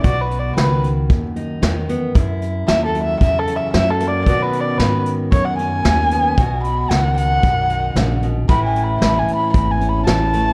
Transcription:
<<
  \new Staff \with { instrumentName = "Erhu" } { \time 4/4 \key b \mixolydian \tempo 4 = 114 \tuplet 3/2 { d''8 b'8 d''8 } b'8 r2 r8 | r4 \tuplet 3/2 { e''8 a'8 e''8 e''8 a'8 e''8 e''8 a'8 d''8 } | \tuplet 3/2 { d''8 b'8 d''8 } b'8 r8 cis''16 fis''16 gis''4.~ | gis''8 b''8 fis''8 fis''2 r8 |
\tuplet 3/2 { b''8 gis''8 b''8 b''8 gis''8 b''8 b''8 gis''8 b''8 } a''4 | }
  \new Staff \with { instrumentName = "Steel-string acoustic guitar" } { \clef bass \time 4/4 \key b \mixolydian << { fis'2~ fis'8 dis'4 b8 | e'2~ e'8 cis'4 ais8 | <dis b cis' fis'>2~ <dis b cis' fis'>8 cis'4 b8 | fis'2~ fis'8 dis'4. |
<e a cis' e'>2~ <e a cis' e'>8 cis'4 a8 | } \\ { b,4 dis4 fis,4 dis4 | fis,4 fis4 cis4 fis4 | b,4 dis4 fis,4 dis4 | b,4 dis4 fis,4 cis8 b,8 |
a,4 e4 e,4 e4 | } >> }
  \new Staff \with { instrumentName = "Upright bass" } { \clef bass \time 4/4 \key b \mixolydian b,,4 cis,4 dis,4 e,4 | fis,4 dis,4 e,4 fis,4 | b,4 gis,4 fis,4 dis,4 | b,,4 cis,4 b,,4 ais,,4 |
a,,4 a,,8 r8 gis,,4 a,,4 | }
  \new DrumStaff \with { instrumentName = "Drums" } \drummode { \time 4/4 <hh bd>8 hh8 <hh sn>8 hh8 <hh bd>8 hh8 <hh sn>8 hh8 | <hh bd>8 hh8 <hh sn>8 hh8 <hh bd>8 hh8 <hh sn>8 hh8 | <hh bd>8 hh8 <hh sn>8 hh8 <hh bd>8 hh8 <hh sn>8 hh8 | <hh bd>8 hh8 <hh sn>8 hh8 <hh bd>8 hh8 <hh sn>8 hh8 |
<hh bd>8 hh8 <hh sn>8 hh8 <hh bd>8 hh8 <hh sn>8 hh8 | }
>>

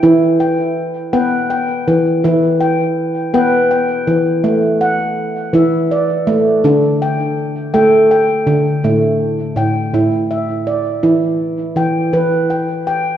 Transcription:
<<
  \new Staff \with { instrumentName = "Handpan" } { \time 6/8 \key e \minor \tempo 4. = 55 << { g''8 g''4 g''8 g''4~ | g''8 g''4 g''8 g''4~ | g''8 fis''4 e''8 d''4~ | d''8 g''4 g''8 g''4~ |
g''8 r8 g''4 e''8 d''8~ | d''8 r8 g''4 g''8 g''8 | } \\ { e'4 r8 b'4 r8 | e'4 r8 b'4 r8 | r4. e'4 r8 | d'4 r8 a'4 r8 |
a4 r8 e'4 r8 | e'4 r8 b'4 r8 | } >> }
  \new Staff \with { instrumentName = "Handpan" } { \clef bass \time 6/8 \key e \minor e4. b4 e8 | e4. b4 e8 | a4. e4 a8 | d4. a4 d8 |
a,4 a,8 a,8 r4 | e4 e8 e8 r4 | }
>>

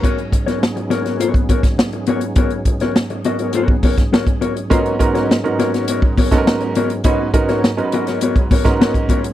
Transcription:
<<
  \new Staff \with { instrumentName = "Clean electric guitar" } { \time 4/4 \key gis \minor \tempo 4 = 103 <b fis' ais' cis''>16 r8 <b fis' ais' cis''>16 r8 <b fis' ais' cis''>16 <b fis' ais' cis''>16 <b fis' ais' cis''>16 r16 <b fis' ais' cis''>16 r8. <b fis' ais' cis''>16 r16 | <b fis' ais' cis''>16 r8 <b fis' ais' cis''>16 r8 <b fis' ais' dis''>16 <b fis' ais' cis''>16 <b fis' ais' cis''>16 r16 <b fis' ais' cis''>16 r16 <b fis' ais' cis''>16 r16 <b fis' ais' cis''>16 r16 | <b fis' ais' cis''>16 r8 <b fis' ais' cis''>16 r8 <b fis' ais' cis''>16 <b fis' ais' cis''>16 <b fis' ais' cis''>16 r16 <b fis' ais' cis''>16 r8. <b fis' ais' cis''>16 r16 | <b fis' ais' cis''>16 r8 <b fis' ais' cis''>16 r8 <b fis' ais' dis''>16 <b fis' ais' cis''>16 <b fis' ais' cis''>16 r16 <b fis' ais' cis''>16 r16 <b fis' ais' cis''>16 r16 <b fis' ais' cis''>16 r16 | }
  \new Staff \with { instrumentName = "Upright piano" } { \time 4/4 \key gis \minor r1 | r1 | <gis, b cis' dis' fis' ais'>8 <gis, b cis' dis' fis' ais'>8 r16 <gis, b cis' dis' fis' ais'>4~ <gis, b cis' dis' fis' ais'>16 r16 <gis, b cis' dis' fis' a' ais'>4 r16 | <gis, b cis' dis' fis' b'>8 <gis, b cis' dis' fis' ais'>8 r16 <gis, b cis' dis' fis' ais' b'>4~ <gis, b cis' dis' fis' ais' b'>16 r16 <gis, b cis' dis' fis' ais'>4 r16 | }
  \new Staff \with { instrumentName = "Tonewheel organ" } { \time 4/4 \key gis \minor <gis, fis b cis' dis' gis'>1~ | <gis, fis b cis' dis' gis'>1~ | <gis, fis b cis' dis' gis'>1~ | <gis, fis b cis' dis' gis'>1 | }
  \new DrumStaff \with { instrumentName = "Drums" } \drummode { \time 4/4 <hh bd>16 hh16 <hh bd>16 <hh sn>16 sn16 hh16 <hh sn>16 <hh sn>16 hh16 <hh bd>16 <hh bd>16 <hh bd sn>16 sn16 hh16 hh16 hh16 | <hh bd>16 hh16 <hh bd>16 <hh sn>16 sn16 hh16 hh16 hh16 hh16 bd16 <hho bd>16 <hh bd sn>16 sn16 <hh bd>16 hh16 hh16 | <hh bd>16 hh16 <hh bd>16 <hh sn>16 sn16 hh16 <hh sn>16 <hh sn>16 hh16 bd16 <hho bd>16 <hh bd sn>16 sn16 hh16 hh16 hh16 | <hh bd>8 <hh bd>16 <hh sn>16 sn16 hh16 hh16 <hh sn>16 hh16 <hh bd>16 <hho bd>16 <hh bd sn>16 sn16 <hh bd>16 <hh bd>16 hh16 | }
>>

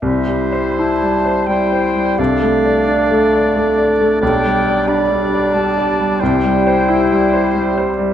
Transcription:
<<
  \new Staff \with { instrumentName = "Flute" } { \time 3/4 \key c \major \tempo 4 = 89 e''4 a''4 g''4 | f''2~ f''8 r8 | g''4 b''4 a''4 | g''2~ g''8 r8 | }
  \new Staff \with { instrumentName = "Oboe" } { \time 3/4 \key c \major c''2 c''4 | d''2. | d''4 d''2 | c''2. | }
  \new Staff \with { instrumentName = "Clarinet" } { \time 3/4 \key c \major e'2 e'4 | d'2. | d'4 d'2 | e'2. | }
  \new Staff \with { instrumentName = "Grand piano" } { \time 3/4 \key c \major \tuplet 3/2 { c,8 g8 c''8 e'8 g8 c''8 g8 c''8 g8 } | \tuplet 3/2 { c,8 a8 d''8 d'8 a8 d''8 a8 d''8 a8 } | \tuplet 3/2 { b,,8 g8 d''8 d'8 g8 d''8 g8 d''8 g8 } | \tuplet 3/2 { c,8 g8 c''8 e'8 g8 c''8 g8 c''8 g8 } | }
  \new Staff \with { instrumentName = "Bassoon" } { \clef bass \time 3/4 \key c \major g2 g4 | a2. | g4 g2 | g2. | }
>>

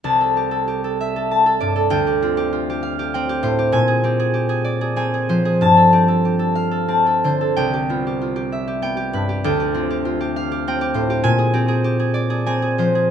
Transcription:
<<
  \new Staff \with { instrumentName = "Harp" } { \time 6/8 \key c \mixolydian \tempo 4. = 64 << { a''2. | g''2. | aes''2. | a''2. |
g''2. | g''2. | aes''2. | } \\ { r16 a'16 g'16 a'16 g'16 a'16 e''16 a'16 a''16 a'16 d''16 a'16~ | a'16 g'16 f'16 g'16 f'16 g'16 f''16 g'16 g''16 g'16 c''16 g'16 | r16 aes'16 g'16 aes'16 g'16 aes'16 d''16 aes'16 aes''16 aes'16 c''16 aes'16 | r16 a'16 g'16 a'16 g'16 a'16 f''16 a'16 a''16 a'16 c''16 a'16 |
r16 g'16 f'16 g'16 f'16 g'16 e''16 g'16 g''16 g'16 b'16 g'16~ | g'16 g'16 f'16 g'16 f'16 g'16 f''16 g'16 g''16 g'16 c''16 g'16 | r16 aes'16 g'16 aes'16 g'16 aes'16 d''16 aes'16 aes''16 aes'16 c''16 aes'16 | } >> }
  \new Staff \with { instrumentName = "Harp" } { \clef bass \time 6/8 \key c \mixolydian c,2~ c,8 g,8 | d,8 c'4. c'8 a,8 | bes,8 c'4. c'8 f8 | g,8 c'4. c'8 d8 |
c,8 b4. b8 g,8 | d,8 c'4. c'8 a,8 | bes,8 c'4. c'8 f8 | }
>>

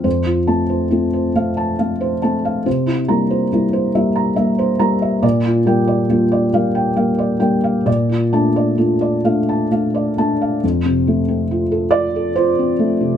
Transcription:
<<
  \new Staff \with { instrumentName = "Felt piano" } { \time 6/8 \key f \major \tempo 4. = 46 c''16 f'16 a''16 c''16 f'16 c''16 f''16 a''16 f''16 c''16 a''16 f''16 | c''16 e'16 bes''16 c''16 e'16 c''16 e''16 bes''16 e''16 c''16 bes''16 e''16 | d''16 f'16 g''16 d''16 f'16 d''16 f''16 g''16 f''16 d''16 g''16 f''16 | d''16 f'16 a''16 d''16 f'16 d''16 f''16 a''16 f''16 d''16 a''16 f''16 |
r4. d''8 c''4 | }
  \new Staff \with { instrumentName = "Felt piano" } { \time 6/8 \key f \major f,8 <a c'>8 <a c'>8 <a c'>8 <a c'>8 <a c'>8 | c8 <g bes>8 <g bes>8 <g bes>8 <g bes>8 <g bes>8 | bes,8 <g bes>8 <g bes>8 <g bes>8 <g bes>8 <g bes>8 | bes,8 <a d'>8 <a d'>8 <a d'>8 <a d'>8 <a d'>8 |
f,16 c16 a16 c'16 f'16 a'16 f'16 a'16 f'16 c'16 a16 c16 | }
>>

